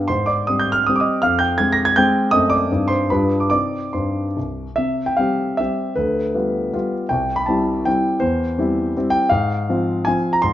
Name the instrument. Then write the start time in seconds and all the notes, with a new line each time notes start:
grand piano
0.08 G#2 C5 C6
0.26 D5 D6
0.47 G3 C4 D#6
0.59 G6
0.72 F6
0.87 G3 C4 D#6
0.96 D6
1.00 D#5 D#6
1.22 F2 F5 F6
1.39 G5 G6
1.58 G#3 C4 G#6
1.73 A#6
1.85 G#6
1.96 G#3 C4 G5 G6
2.31 F#2 A3 C4 D#5 D#6
2.50 D5 D6
2.71 G2 G3 C4 D#4
2.88 C5 C6
3.10 G2 G3 D4 F4 B4 B5
3.40 D6
3.50 C3 C4 D#4 D5 D6
3.93 G2 C5 C6
4.37 C2
4.76 C3 E5
5.06 G5
5.17 G3 C4 G4 F5
5.57 G3 C4 G4 E5
5.96 D2 B4
6.35 G3 B3 F4
6.73 G3 B3 F4
7.09 C2 G5
7.36 B5
7.46 G3 C4 E4 A5
7.85 G3 C4 E4 G5
8.20 E2 C5
8.58 G3 C4 E4
8.97 G3 C4 E4
9.10 G5
9.29 G#2 F5
9.69 F3 C4 F4
10.05 F3 C4 F4 G#5
10.33 A#5
10.42 G#2 C6